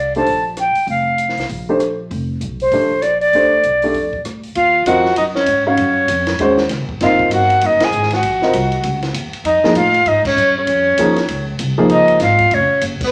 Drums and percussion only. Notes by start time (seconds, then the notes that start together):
0.15 open hi-hat
0.26 open hi-hat
0.57 cross-stick, closed hi-hat
0.75 open hi-hat
0.87 open hi-hat
1.18 closed hi-hat
1.29 snare
1.37 snare, open hi-hat
1.49 open hi-hat
1.80 cross-stick, closed hi-hat
2.11 open hi-hat
2.41 closed hi-hat
2.60 open hi-hat
2.71 open hi-hat
3.02 cross-stick, closed hi-hat
3.21 open hi-hat
3.33 open hi-hat
3.63 closed hi-hat
3.82 open hi-hat
3.94 open hi-hat
4.13 kick
4.25 cross-stick, closed hi-hat
4.43 open hi-hat
4.55 ride
4.86 hi-hat pedal, ride
5.05 snare
5.16 ride
5.35 snare
5.46 hi-hat pedal, ride
5.77 ride
6.08 hi-hat pedal, ride
6.27 snare, ride
6.39 ride
6.57 snare
6.69 snare, hi-hat pedal, ride
6.89 kick
7.00 snare, ride
7.19 kick
7.31 hi-hat pedal, ride
7.50 ride
7.61 ride
7.80 snare, ride
7.92 hi-hat pedal
8.03 snare
8.11 snare, ride
8.23 ride
8.42 snare
8.53 hi-hat pedal, ride
8.72 ride
8.83 ride
9.02 snare, ride
9.14 hi-hat pedal, ride
9.33 ride
9.45 ride
9.64 snare
9.75 hi-hat pedal, ride
9.94 ride
10.06 ride
10.25 kick, crash
10.37 hi-hat pedal
10.67 ride
10.98 hi-hat pedal, ride
11.16 snare, ride
11.28 ride
11.59 hi-hat pedal, ride
11.89 ride
12.08 ride
12.20 snare, hi-hat pedal, ride
12.39 kick, ride
12.51 ride
12.81 hi-hat pedal, ride
13.01 kick, crash